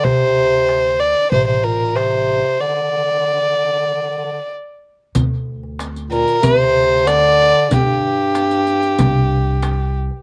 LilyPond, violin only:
\new Staff \with { instrumentName = "Violin" } { \time 4/4 \tempo 4 = 94 c''4. d''8 c''16 c''16 bes'8 c''4 | d''2. r4 | r4. bes'8 c''4 d''4 | g'2.~ g'8 r8 | }